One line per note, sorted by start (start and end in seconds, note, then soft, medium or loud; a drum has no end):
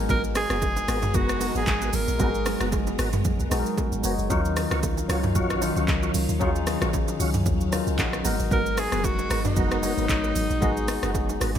0.00 4.26 F#3 medium
0.00 0.67 G#3 loud
0.00 4.26 G#3 medium
0.00 0.67 B3 medium
0.00 4.26 B3 medium
0.00 0.68 D#4 medium
0.00 0.68 F#4 medium
0.00 0.68 A#4 loud
0.00 4.26 A#4 medium
0.00 4.32 G#5 medium
0.09 0.46 G#1 loud
0.09 0.20 B3 loud
0.09 0.20 F#4 medium
0.09 0.20 A#4 loud
0.09 0.22 A#4 loud
0.09 kick loud
0.09 low conga medium
0.09 shaker medium
0.24 shaker medium
0.35 1.17 G#4 loud
0.35 cross-stick loud
0.35 open hi-hat medium
0.35 high bongo medium
0.35 low bongo medium
0.35 shaker medium
0.50 0.84 F#1 loud
0.50 0.58 B3 medium
0.50 0.59 F#4 medium
0.50 0.59 A#4 medium
0.50 cross-stick loud
0.50 shaker medium
0.62 kick medium
0.62 high bongo medium
0.62 shaker medium
0.76 low bongo medium
0.76 shaker medium
0.86 1.12 G#1 loud
0.86 1.30 G#3 medium
0.86 1.31 B3 medium
0.86 0.99 B3 medium
0.86 1.31 D#4 medium
0.86 0.99 F#4 medium
0.86 1.32 F#4 medium
0.86 1.32 G#4 medium
0.86 0.99 A#4 medium
0.86 cross-stick loud
0.86 open hi-hat medium
0.86 shaker loud
1.02 mid tom loud
1.02 low bongo medium
1.02 shaker medium
1.14 1.51 F#1 loud
1.14 1.52 B3 loud
1.14 1.52 F#4 medium
1.14 1.56 F#4 loud
1.14 1.52 A#4 loud
1.14 kick loud
1.14 low conga medium
1.14 shaker medium
1.29 cross-stick loud
1.29 shaker medium
1.39 2.04 G#3 medium
1.39 2.05 B3 medium
1.39 2.05 D#4 medium
1.39 2.06 F#4 medium
1.39 1.49 A4 medium
1.39 open hi-hat medium
1.39 low bongo medium
1.39 shaker loud
1.49 2.09 A#4 medium
1.55 1.66 G#1 medium
1.55 1.64 B3 medium
1.55 1.64 F#4 medium
1.55 1.96 G#4 loud
1.55 1.64 A#4 medium
1.55 shaker medium
1.67 1.91 G#1 loud
1.67 kick medium
1.67 clap medium
1.67 high bongo medium
1.67 shaker medium
1.81 1.90 B3 medium
1.81 1.90 F#4 medium
1.81 1.90 A#4 medium
1.81 shaker medium
1.93 2.06 G#1 loud
1.93 2.73 A#4 loud
1.93 open hi-hat medium
1.93 low conga medium
1.93 shaker loud
2.08 2.19 A#1 loud
2.08 shaker medium
2.18 2.56 G#1 loud
2.18 3.04 G#3 loud
2.18 3.04 B3 medium
2.18 2.30 B3 loud
2.18 3.04 D#4 medium
2.18 2.30 F#4 medium
2.18 3.05 F#4 medium
2.18 3.05 G#4 loud
2.18 2.30 A#4 loud
2.18 kick loud
2.18 low conga medium
2.18 shaker medium
2.34 shaker medium
2.46 cross-stick loud
2.46 open hi-hat medium
2.46 high bongo medium
2.46 low bongo medium
2.46 shaker loud
2.60 2.95 F#1 medium
2.60 2.69 B3 medium
2.60 2.69 F#4 medium
2.60 2.69 A#4 medium
2.60 cross-stick loud
2.60 shaker medium
2.72 kick loud
2.72 high bongo medium
2.72 shaker medium
2.87 low bongo medium
2.87 shaker medium
2.98 3.22 G#1 loud
2.98 3.09 B3 medium
2.98 3.09 F#4 medium
2.98 3.09 A#4 medium
2.98 cross-stick loud
2.98 open hi-hat medium
2.98 shaker loud
3.13 mid tom loud
3.13 low bongo medium
3.13 shaker medium
3.25 kick loud
3.25 low conga medium
3.25 shaker medium
3.40 3.50 B1 medium
3.40 shaker medium
3.50 3.64 A#1 loud
3.50 3.94 G#3 medium
3.50 3.94 B3 medium
3.50 3.95 D#4 medium
3.50 3.95 F#4 medium
3.50 3.59 G#4 medium
3.50 cross-stick medium
3.50 open hi-hat medium
3.50 low bongo medium
3.50 shaker loud
3.59 3.98 A#4 loud
3.66 shaker medium
3.78 kick medium
3.78 high bongo medium
3.78 shaker medium
3.92 4.03 G#1 loud
3.92 shaker medium
4.02 4.17 F#1 medium
4.02 4.25 G#3 medium
4.02 4.25 B3 medium
4.02 4.14 B3 medium
4.02 4.26 D#4 medium
4.02 4.15 F#4 medium
4.02 4.26 F#4 medium
4.02 4.15 A#4 medium
4.02 4.26 C#5 loud
4.02 open hi-hat medium
4.02 low conga medium
4.02 shaker loud
4.18 4.29 F#1 medium
4.18 shaker medium
4.29 4.67 D#2 loud
4.29 8.21 D#3 medium
4.29 4.94 F#3 loud
4.29 11.59 F#3 medium
4.29 4.94 C#4 loud
4.29 8.21 C#4 medium
4.29 4.94 D#4 loud
4.29 4.41 F4 loud
4.29 4.95 F4 loud
4.29 4.41 F#4 medium
4.29 4.95 A#4 loud
4.29 4.41 C#5 loud
4.29 8.21 F5 medium
4.29 kick loud
4.29 low conga medium
4.29 shaker medium
4.45 shaker medium
4.56 cross-stick loud
4.56 open hi-hat medium
4.56 high bongo medium
4.56 low bongo medium
4.56 shaker medium
4.71 5.05 C#2 loud
4.71 4.80 F4 medium
4.71 4.80 F#4 medium
4.71 4.80 C#5 medium
4.71 cross-stick loud
4.71 shaker medium
4.83 kick loud
4.83 high bongo medium
4.83 shaker medium
4.97 low bongo medium
4.97 shaker medium
5.08 5.33 C#2 medium
5.08 5.52 F#3 medium
5.08 5.52 C#4 medium
5.08 5.52 D#4 medium
5.08 5.20 F4 medium
5.08 5.53 F4 medium
5.08 5.20 F#4 medium
5.08 5.20 C#5 medium
5.08 5.53 C#5 medium
5.08 cross-stick loud
5.08 open hi-hat medium
5.08 shaker medium
5.23 mid tom loud
5.23 low bongo medium
5.23 shaker medium
5.35 5.72 A#1 loud
5.35 5.73 F4 loud
5.35 5.73 F#4 medium
5.35 5.73 C#5 loud
5.35 kick loud
5.35 low conga medium
5.35 shaker medium
5.50 cross-stick medium
5.50 shaker medium
5.60 5.68 F3 medium
5.60 6.26 C#4 medium
5.60 6.26 D#4 medium
5.60 6.26 F4 medium
5.60 6.27 A#4 loud
5.60 open hi-hat medium
5.60 low bongo medium
5.60 shaker medium
5.67 6.28 F#3 loud
5.76 5.87 C#2 medium
5.76 5.85 F4 medium
5.76 5.85 F#4 medium
5.76 5.85 C#5 medium
5.76 shaker medium
5.88 6.12 C#2 loud
5.88 kick medium
5.88 clap medium
5.88 high bongo medium
5.88 shaker medium
6.02 6.11 F4 medium
6.02 6.11 F#4 medium
6.02 6.11 C#5 medium
6.02 shaker medium
6.14 6.27 C#2 loud
6.14 open hi-hat medium
6.14 low conga medium
6.14 shaker loud
6.29 6.40 D#2 medium
6.29 shaker medium
6.39 6.77 D#2 loud
6.39 7.25 F#3 loud
6.39 7.25 C#4 loud
6.39 7.26 D#4 loud
6.39 6.51 F4 loud
6.39 7.26 F4 loud
6.39 6.51 F#4 medium
6.39 7.26 G#4 loud
6.39 6.51 C#5 loud
6.39 kick loud
6.39 low conga medium
6.39 shaker medium
6.56 shaker medium
6.67 cross-stick loud
6.67 open hi-hat medium
6.67 high bongo medium
6.67 low bongo medium
6.67 shaker medium
6.81 7.16 A#1 loud
6.81 6.90 F4 medium
6.81 6.90 F#4 medium
6.81 6.90 C#5 medium
6.81 cross-stick loud
6.81 shaker medium
6.93 kick loud
6.93 high bongo medium
6.93 shaker medium
7.08 low bongo medium
7.08 shaker medium
7.20 7.43 C#2 medium
7.20 7.30 F4 medium
7.20 7.30 F#4 medium
7.20 7.30 C#5 medium
7.20 open hi-hat medium
7.20 shaker loud
7.34 mid tom loud
7.34 low bongo medium
7.34 shaker medium
7.46 7.83 D#2 loud
7.46 kick loud
7.46 low conga medium
7.46 shaker medium
7.61 shaker medium
7.71 8.15 F#3 loud
7.71 8.15 C#4 medium
7.71 8.15 D#4 medium
7.71 8.16 F4 medium
7.71 8.16 A#4 loud
7.71 cross-stick medium
7.71 open hi-hat medium
7.71 low bongo medium
7.71 shaker medium
7.87 7.98 C#2 medium
7.87 shaker medium
7.99 8.22 A#1 loud
7.99 8.23 F#5 medium
7.99 kick loud
7.99 clap medium
7.99 high bongo medium
7.99 shaker medium
8.13 cross-stick medium
8.13 shaker medium
8.23 8.38 G#1 loud
8.23 9.09 G#3 loud
8.23 11.59 G#3 medium
8.23 9.09 B3 medium
8.23 8.35 B3 medium
8.23 11.59 B3 medium
8.23 9.10 D#4 medium
8.23 8.36 F#4 medium
8.23 9.10 F#4 medium
8.23 10.33 A#4 medium
8.23 8.36 A#4 medium
8.23 9.10 A#4 loud
8.23 8.49 A#5 medium
8.23 open hi-hat medium
8.23 low conga medium
8.23 shaker loud
8.40 8.50 G#1 loud
8.40 shaker medium
8.51 8.88 G#1 loud
8.51 8.62 B3 loud
8.51 8.62 F#4 medium
8.51 8.62 A#4 loud
8.51 8.80 A#4 loud
8.51 kick loud
8.51 low conga medium
8.51 shaker medium
8.66 shaker medium
8.77 9.06 G#4 loud
8.77 cross-stick loud
8.77 open hi-hat medium
8.77 high bongo medium
8.77 low bongo medium
8.77 shaker medium
8.92 9.26 F#1 medium
8.92 9.01 B3 medium
8.92 9.01 F#4 medium
8.92 9.01 A#4 medium
8.92 cross-stick loud
8.92 shaker medium
9.04 9.45 F#4 loud
9.04 kick loud
9.04 high bongo medium
9.04 shaker medium
9.19 low bongo medium
9.19 shaker medium
9.29 9.54 G#1 medium
9.29 9.73 G#3 medium
9.29 9.73 B3 medium
9.29 9.41 B3 medium
9.29 9.73 D#4 medium
9.29 9.41 F#4 medium
9.29 9.74 F#4 medium
9.29 9.41 A#4 medium
9.29 9.74 A#4 medium
9.29 cross-stick loud
9.29 open hi-hat medium
9.29 shaker medium
9.45 11.59 D#4 loud
9.45 mid tom loud
9.45 low bongo medium
9.45 shaker medium
9.56 9.93 F#1 loud
9.56 9.94 B3 loud
9.56 9.94 F#4 medium
9.56 9.94 A#4 loud
9.56 kick loud
9.56 low conga medium
9.56 shaker medium
9.71 cross-stick loud
9.71 shaker medium
9.81 10.46 G#3 medium
9.81 10.47 B3 medium
9.81 10.47 D#4 medium
9.81 10.47 F#4 medium
9.81 10.48 C#5 medium
9.81 open hi-hat medium
9.81 low bongo medium
9.81 shaker loud
9.97 10.08 G#1 medium
9.97 10.06 B3 medium
9.97 10.06 F#4 medium
9.97 10.06 A#4 medium
9.97 shaker medium
10.09 10.33 G#1 medium
10.09 kick medium
10.09 clap medium
10.09 high bongo medium
10.09 shaker medium
10.23 10.32 B3 medium
10.23 10.32 F#4 medium
10.23 10.33 A#4 medium
10.23 shaker medium
10.36 10.49 G#1 medium
10.36 11.59 G#4 medium
10.36 open hi-hat medium
10.36 low conga medium
10.36 shaker loud
10.50 10.61 A#1 medium
10.50 shaker medium
10.60 10.99 G#1 loud
10.60 11.46 G#3 loud
10.60 11.46 B3 loud
10.60 10.72 B3 loud
10.60 11.47 D#4 loud
10.60 10.72 F#4 medium
10.60 11.47 F#4 loud
10.60 11.47 G#4 loud
10.60 10.73 A#4 loud
10.60 kick loud
10.60 low conga medium
10.60 shaker medium
10.77 shaker medium
10.88 cross-stick loud
10.88 open hi-hat medium
10.88 high bongo medium
10.88 low bongo medium
10.88 shaker medium
11.02 11.37 F#1 loud
11.02 11.11 B3 medium
11.02 11.11 F#4 medium
11.02 11.11 A#4 medium
11.02 cross-stick loud
11.02 shaker medium
11.15 kick medium
11.15 high bongo medium
11.15 shaker medium
11.29 low bongo medium
11.29 shaker medium
11.40 11.59 G#1 loud
11.40 11.51 B3 medium
11.40 11.51 F#4 medium
11.40 11.51 A#4 medium
11.40 cross-stick loud
11.40 open hi-hat medium
11.40 shaker loud
11.55 mid tom loud
11.55 low bongo medium
11.55 shaker medium